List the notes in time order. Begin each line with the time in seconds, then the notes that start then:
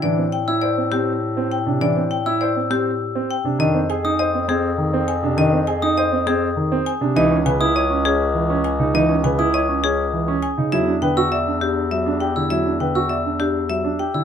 0.02 A2 E3 D4 D5
0.18 C4
0.32 G5
0.48 E4 E6
0.62 C5 D5
0.77 C4
0.92 C4 G4
1.37 C4
1.52 G5
1.66 C3 D4
1.81 E3 D4 D5
1.97 C4
2.11 G5
2.26 E4 E6
2.41 C5 D5
2.56 C4
2.70 C4 G4
3.15 C4
3.31 G5
3.44 C3 D4
3.59 F2 D#3 D4 D#5
3.75 C4
3.90 G#4 G#5
4.04 D#4 D#6
4.19 C5 D#5
4.34 C4
4.48 C4 G#4
4.78 D#3
4.93 C4
5.08 G#5
5.23 C3 D4
5.37 D#3 D4 D#5
5.53 C4
5.67 G#4 G#5
5.82 D#4 D#6
5.97 C5 D#5
6.12 C4
6.27 C4 G#4
6.57 D#3
6.72 C4
6.86 G#5
7.01 C3 D4
7.16 C#2 E3 D#4 D#5
7.31 C#4
7.46 C#3 B4 G#5
7.60 E4 D#6
7.75 C#5 D#5
7.90 C#4
8.05 C#4 G#4
8.35 E3
8.50 C#4
8.64 G#5
8.79 C#3 D#4
8.94 E3 D#4 D#5
9.09 C#4
9.24 C#3 B4 G#5
9.39 E4 D#6
9.54 C#5 D#5
9.69 C#4
9.84 C#4 G#4
10.13 E3
10.28 C#4
10.43 G#5
10.58 C#3 D#4
10.72 E2 F#3 E4 E5
10.87 D4
11.02 D3 B4 G5
11.17 F#4 E6
11.32 D5 E5
11.47 D4
11.61 D4 G4
11.91 F#3 E5
12.06 D4
12.20 G4 G5
12.36 D3 E4 E6
12.50 F#3 E4 E5
12.66 D4
12.80 D3 B4 G5
12.95 F#4 E6
13.10 D5 E5
13.25 D4
13.40 D4 G4
13.69 F#3 E5
13.84 D4
13.99 G4 G5
14.14 D3 E4 E6